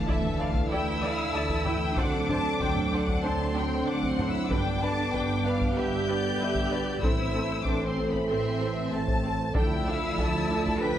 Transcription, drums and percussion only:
0, 0, Header, 1, 2, 480
1, 0, Start_track
1, 0, Tempo, 631579
1, 1499, Time_signature, 4, 2, 24, 8
1, 8349, End_track
2, 0, Start_track
2, 0, Title_t, "Taiko and cinematic ensemble drums"
2, 54, Note_on_c, 9, 41, 75
2, 130, Note_off_c, 9, 41, 0
2, 174, Note_on_c, 9, 45, 47
2, 250, Note_off_c, 9, 45, 0
2, 410, Note_on_c, 9, 41, 73
2, 486, Note_off_c, 9, 41, 0
2, 1130, Note_on_c, 9, 41, 77
2, 1206, Note_off_c, 9, 41, 0
2, 1256, Note_on_c, 9, 45, 52
2, 1332, Note_off_c, 9, 45, 0
2, 1494, Note_on_c, 9, 41, 85
2, 1570, Note_off_c, 9, 41, 0
2, 1741, Note_on_c, 9, 45, 50
2, 1817, Note_off_c, 9, 45, 0
2, 1980, Note_on_c, 9, 41, 78
2, 2056, Note_off_c, 9, 41, 0
2, 2101, Note_on_c, 9, 45, 45
2, 2177, Note_off_c, 9, 45, 0
2, 2340, Note_on_c, 9, 41, 71
2, 2416, Note_off_c, 9, 41, 0
2, 3062, Note_on_c, 9, 41, 76
2, 3138, Note_off_c, 9, 41, 0
2, 3183, Note_on_c, 9, 45, 48
2, 3259, Note_off_c, 9, 45, 0
2, 3421, Note_on_c, 9, 41, 84
2, 3497, Note_off_c, 9, 41, 0
2, 3905, Note_on_c, 9, 41, 71
2, 3981, Note_off_c, 9, 41, 0
2, 4262, Note_on_c, 9, 41, 72
2, 4338, Note_off_c, 9, 41, 0
2, 4976, Note_on_c, 9, 41, 71
2, 5052, Note_off_c, 9, 41, 0
2, 5342, Note_on_c, 9, 41, 87
2, 5418, Note_off_c, 9, 41, 0
2, 5818, Note_on_c, 9, 41, 71
2, 5894, Note_off_c, 9, 41, 0
2, 6177, Note_on_c, 9, 41, 67
2, 6253, Note_off_c, 9, 41, 0
2, 6899, Note_on_c, 9, 41, 74
2, 6975, Note_off_c, 9, 41, 0
2, 7257, Note_on_c, 9, 41, 93
2, 7333, Note_off_c, 9, 41, 0
2, 7734, Note_on_c, 9, 41, 76
2, 7810, Note_off_c, 9, 41, 0
2, 8099, Note_on_c, 9, 41, 72
2, 8175, Note_off_c, 9, 41, 0
2, 8349, End_track
0, 0, End_of_file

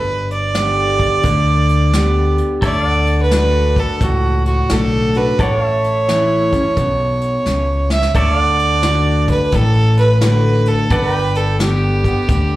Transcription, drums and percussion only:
0, 0, Header, 1, 2, 480
1, 0, Start_track
1, 0, Key_signature, 2, "major"
1, 0, Tempo, 691244
1, 1823, Time_signature, 4, 2, 24, 8
1, 8722, End_track
2, 0, Start_track
2, 0, Title_t, "Drums"
2, 212, Note_on_c, 9, 42, 52
2, 281, Note_off_c, 9, 42, 0
2, 380, Note_on_c, 9, 38, 100
2, 380, Note_on_c, 9, 42, 77
2, 449, Note_off_c, 9, 38, 0
2, 449, Note_off_c, 9, 42, 0
2, 691, Note_on_c, 9, 36, 73
2, 693, Note_on_c, 9, 42, 58
2, 761, Note_off_c, 9, 36, 0
2, 762, Note_off_c, 9, 42, 0
2, 862, Note_on_c, 9, 36, 100
2, 865, Note_on_c, 9, 42, 79
2, 931, Note_off_c, 9, 36, 0
2, 934, Note_off_c, 9, 42, 0
2, 1173, Note_on_c, 9, 42, 61
2, 1243, Note_off_c, 9, 42, 0
2, 1342, Note_on_c, 9, 38, 102
2, 1342, Note_on_c, 9, 42, 82
2, 1412, Note_off_c, 9, 38, 0
2, 1412, Note_off_c, 9, 42, 0
2, 1652, Note_on_c, 9, 42, 60
2, 1722, Note_off_c, 9, 42, 0
2, 1818, Note_on_c, 9, 42, 74
2, 1820, Note_on_c, 9, 36, 98
2, 1887, Note_off_c, 9, 42, 0
2, 1889, Note_off_c, 9, 36, 0
2, 2130, Note_on_c, 9, 42, 64
2, 2199, Note_off_c, 9, 42, 0
2, 2300, Note_on_c, 9, 38, 99
2, 2300, Note_on_c, 9, 42, 85
2, 2370, Note_off_c, 9, 38, 0
2, 2370, Note_off_c, 9, 42, 0
2, 2614, Note_on_c, 9, 36, 72
2, 2617, Note_on_c, 9, 42, 55
2, 2683, Note_off_c, 9, 36, 0
2, 2687, Note_off_c, 9, 42, 0
2, 2783, Note_on_c, 9, 36, 100
2, 2784, Note_on_c, 9, 42, 80
2, 2853, Note_off_c, 9, 36, 0
2, 2853, Note_off_c, 9, 42, 0
2, 3095, Note_on_c, 9, 42, 57
2, 3164, Note_off_c, 9, 42, 0
2, 3260, Note_on_c, 9, 38, 94
2, 3260, Note_on_c, 9, 42, 72
2, 3330, Note_off_c, 9, 38, 0
2, 3330, Note_off_c, 9, 42, 0
2, 3570, Note_on_c, 9, 42, 55
2, 3640, Note_off_c, 9, 42, 0
2, 3741, Note_on_c, 9, 42, 67
2, 3743, Note_on_c, 9, 36, 98
2, 3811, Note_off_c, 9, 42, 0
2, 3812, Note_off_c, 9, 36, 0
2, 4055, Note_on_c, 9, 42, 57
2, 4125, Note_off_c, 9, 42, 0
2, 4226, Note_on_c, 9, 38, 107
2, 4226, Note_on_c, 9, 42, 75
2, 4296, Note_off_c, 9, 38, 0
2, 4296, Note_off_c, 9, 42, 0
2, 4532, Note_on_c, 9, 36, 71
2, 4534, Note_on_c, 9, 42, 56
2, 4602, Note_off_c, 9, 36, 0
2, 4603, Note_off_c, 9, 42, 0
2, 4698, Note_on_c, 9, 42, 70
2, 4701, Note_on_c, 9, 36, 102
2, 4768, Note_off_c, 9, 42, 0
2, 4770, Note_off_c, 9, 36, 0
2, 5008, Note_on_c, 9, 42, 60
2, 5078, Note_off_c, 9, 42, 0
2, 5178, Note_on_c, 9, 38, 52
2, 5247, Note_off_c, 9, 38, 0
2, 5486, Note_on_c, 9, 38, 79
2, 5555, Note_off_c, 9, 38, 0
2, 5571, Note_on_c, 9, 38, 68
2, 5640, Note_off_c, 9, 38, 0
2, 5657, Note_on_c, 9, 36, 98
2, 5657, Note_on_c, 9, 42, 76
2, 5726, Note_off_c, 9, 42, 0
2, 5727, Note_off_c, 9, 36, 0
2, 5964, Note_on_c, 9, 42, 60
2, 6034, Note_off_c, 9, 42, 0
2, 6131, Note_on_c, 9, 38, 104
2, 6131, Note_on_c, 9, 42, 83
2, 6200, Note_off_c, 9, 38, 0
2, 6200, Note_off_c, 9, 42, 0
2, 6444, Note_on_c, 9, 42, 59
2, 6445, Note_on_c, 9, 36, 74
2, 6514, Note_off_c, 9, 42, 0
2, 6515, Note_off_c, 9, 36, 0
2, 6615, Note_on_c, 9, 36, 105
2, 6615, Note_on_c, 9, 42, 76
2, 6684, Note_off_c, 9, 36, 0
2, 6684, Note_off_c, 9, 42, 0
2, 6924, Note_on_c, 9, 42, 58
2, 6994, Note_off_c, 9, 42, 0
2, 7092, Note_on_c, 9, 38, 110
2, 7092, Note_on_c, 9, 42, 77
2, 7161, Note_off_c, 9, 38, 0
2, 7161, Note_off_c, 9, 42, 0
2, 7398, Note_on_c, 9, 42, 56
2, 7468, Note_off_c, 9, 42, 0
2, 7571, Note_on_c, 9, 42, 73
2, 7573, Note_on_c, 9, 36, 109
2, 7640, Note_off_c, 9, 42, 0
2, 7642, Note_off_c, 9, 36, 0
2, 7882, Note_on_c, 9, 42, 56
2, 7951, Note_off_c, 9, 42, 0
2, 8055, Note_on_c, 9, 38, 105
2, 8055, Note_on_c, 9, 42, 77
2, 8125, Note_off_c, 9, 38, 0
2, 8125, Note_off_c, 9, 42, 0
2, 8364, Note_on_c, 9, 36, 69
2, 8365, Note_on_c, 9, 42, 56
2, 8433, Note_off_c, 9, 36, 0
2, 8435, Note_off_c, 9, 42, 0
2, 8533, Note_on_c, 9, 36, 110
2, 8533, Note_on_c, 9, 42, 75
2, 8602, Note_off_c, 9, 36, 0
2, 8602, Note_off_c, 9, 42, 0
2, 8722, End_track
0, 0, End_of_file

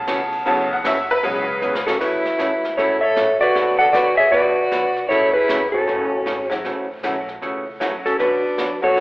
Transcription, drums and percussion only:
0, 0, Header, 1, 2, 480
1, 0, Start_track
1, 0, Key_signature, 3, "major"
1, 0, Tempo, 386598
1, 572, Time_signature, 4, 2, 24, 8
1, 11177, End_track
2, 0, Start_track
2, 0, Title_t, "Drums"
2, 93, Note_on_c, 9, 38, 83
2, 93, Note_on_c, 9, 44, 77
2, 93, Note_on_c, 9, 51, 77
2, 217, Note_off_c, 9, 38, 0
2, 217, Note_off_c, 9, 44, 0
2, 217, Note_off_c, 9, 51, 0
2, 401, Note_on_c, 9, 51, 56
2, 525, Note_off_c, 9, 51, 0
2, 571, Note_on_c, 9, 51, 68
2, 695, Note_off_c, 9, 51, 0
2, 1052, Note_on_c, 9, 38, 87
2, 1052, Note_on_c, 9, 44, 59
2, 1052, Note_on_c, 9, 51, 89
2, 1176, Note_off_c, 9, 38, 0
2, 1176, Note_off_c, 9, 44, 0
2, 1176, Note_off_c, 9, 51, 0
2, 1360, Note_on_c, 9, 51, 53
2, 1484, Note_off_c, 9, 51, 0
2, 1531, Note_on_c, 9, 51, 70
2, 1656, Note_off_c, 9, 51, 0
2, 2012, Note_on_c, 9, 44, 66
2, 2136, Note_off_c, 9, 44, 0
2, 2173, Note_on_c, 9, 38, 72
2, 2297, Note_off_c, 9, 38, 0
2, 2331, Note_on_c, 9, 38, 97
2, 2455, Note_off_c, 9, 38, 0
2, 2492, Note_on_c, 9, 36, 67
2, 2494, Note_on_c, 9, 25, 46
2, 2494, Note_on_c, 9, 38, 44
2, 2494, Note_on_c, 9, 49, 63
2, 2616, Note_off_c, 9, 36, 0
2, 2618, Note_off_c, 9, 38, 0
2, 2618, Note_off_c, 9, 49, 0
2, 2797, Note_on_c, 9, 38, 52
2, 2922, Note_off_c, 9, 38, 0
2, 2971, Note_on_c, 9, 38, 73
2, 2971, Note_on_c, 9, 44, 60
2, 3095, Note_off_c, 9, 38, 0
2, 3095, Note_off_c, 9, 44, 0
2, 3278, Note_on_c, 9, 38, 43
2, 3402, Note_off_c, 9, 38, 0
2, 3453, Note_off_c, 9, 25, 0
2, 3453, Note_on_c, 9, 25, 49
2, 3453, Note_on_c, 9, 38, 39
2, 3578, Note_off_c, 9, 38, 0
2, 3929, Note_on_c, 9, 38, 78
2, 3929, Note_on_c, 9, 44, 56
2, 4053, Note_off_c, 9, 38, 0
2, 4053, Note_off_c, 9, 44, 0
2, 4235, Note_on_c, 9, 38, 39
2, 4360, Note_off_c, 9, 38, 0
2, 4411, Note_off_c, 9, 25, 0
2, 4411, Note_on_c, 9, 25, 44
2, 4411, Note_on_c, 9, 38, 45
2, 4535, Note_off_c, 9, 38, 0
2, 4891, Note_on_c, 9, 38, 71
2, 4891, Note_on_c, 9, 44, 67
2, 5015, Note_off_c, 9, 38, 0
2, 5015, Note_off_c, 9, 44, 0
2, 5372, Note_off_c, 9, 25, 0
2, 5372, Note_on_c, 9, 25, 50
2, 5372, Note_on_c, 9, 38, 38
2, 5496, Note_off_c, 9, 38, 0
2, 5857, Note_on_c, 9, 38, 77
2, 5857, Note_on_c, 9, 44, 56
2, 5981, Note_off_c, 9, 38, 0
2, 5981, Note_off_c, 9, 44, 0
2, 6164, Note_on_c, 9, 38, 39
2, 6289, Note_off_c, 9, 38, 0
2, 6334, Note_off_c, 9, 25, 0
2, 6334, Note_on_c, 9, 25, 40
2, 6334, Note_on_c, 9, 38, 43
2, 6458, Note_off_c, 9, 38, 0
2, 6817, Note_on_c, 9, 38, 75
2, 6817, Note_on_c, 9, 44, 73
2, 6941, Note_off_c, 9, 38, 0
2, 6941, Note_off_c, 9, 44, 0
2, 7297, Note_off_c, 9, 25, 0
2, 7297, Note_on_c, 9, 25, 44
2, 7297, Note_on_c, 9, 38, 41
2, 7421, Note_off_c, 9, 38, 0
2, 7778, Note_on_c, 9, 38, 73
2, 7778, Note_on_c, 9, 44, 53
2, 7902, Note_off_c, 9, 38, 0
2, 7902, Note_off_c, 9, 44, 0
2, 8080, Note_on_c, 9, 38, 42
2, 8204, Note_off_c, 9, 38, 0
2, 8255, Note_off_c, 9, 25, 0
2, 8255, Note_on_c, 9, 25, 50
2, 8255, Note_on_c, 9, 38, 48
2, 8379, Note_off_c, 9, 38, 0
2, 8732, Note_on_c, 9, 38, 72
2, 8732, Note_on_c, 9, 44, 59
2, 8856, Note_off_c, 9, 38, 0
2, 8856, Note_off_c, 9, 44, 0
2, 9041, Note_on_c, 9, 38, 39
2, 9165, Note_off_c, 9, 38, 0
2, 9216, Note_off_c, 9, 25, 0
2, 9216, Note_on_c, 9, 25, 50
2, 9216, Note_on_c, 9, 38, 42
2, 9340, Note_off_c, 9, 38, 0
2, 9696, Note_on_c, 9, 38, 78
2, 9696, Note_on_c, 9, 44, 54
2, 9820, Note_off_c, 9, 38, 0
2, 9820, Note_off_c, 9, 44, 0
2, 10002, Note_on_c, 9, 38, 42
2, 10126, Note_off_c, 9, 38, 0
2, 10174, Note_off_c, 9, 25, 0
2, 10174, Note_on_c, 9, 25, 46
2, 10174, Note_on_c, 9, 38, 44
2, 10298, Note_off_c, 9, 38, 0
2, 10653, Note_on_c, 9, 38, 74
2, 10653, Note_on_c, 9, 44, 59
2, 10778, Note_off_c, 9, 38, 0
2, 10778, Note_off_c, 9, 44, 0
2, 11133, Note_off_c, 9, 25, 0
2, 11133, Note_on_c, 9, 25, 44
2, 11133, Note_on_c, 9, 38, 45
2, 11177, Note_off_c, 9, 25, 0
2, 11177, Note_off_c, 9, 38, 0
2, 11177, End_track
0, 0, End_of_file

